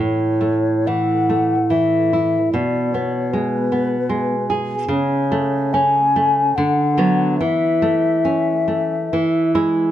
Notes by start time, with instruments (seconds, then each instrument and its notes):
Already playing: nylon-string guitar A2, flute C#5
0.41 nylon-string guitar A3
0.87 nylon-string guitar E3, flute F#5
1.29 nylon-string guitar A3
1.70 nylon-string guitar E3, flute E5
2.13 nylon-string guitar E4
2.53 nylon-string guitar B2, flute D5
2.94 nylon-string guitar B3, flute C#5
3.32 nylon-string guitar G#3, flute B4
3.72 nylon-string guitar B3
4.09 nylon-string guitar G#3
4.50 nylon-string guitar G#4
4.88 nylon-string guitar C#3, flute C#5
5.32 nylon-string guitar A3
5.73 nylon-string guitar C#4, flute G#5
6.16 nylon-string guitar A3
6.56 nylon-string guitar D3, flute F#5
6.97 nylon-string guitar F#3 B3
7.39 nylon-string guitar E3, flute E5
7.82 nylon-string guitar A3
8.25 nylon-string guitar C#4
8.68 nylon-string guitar A3
9.13 nylon-string guitar E3
9.55 nylon-string guitar G#3 E4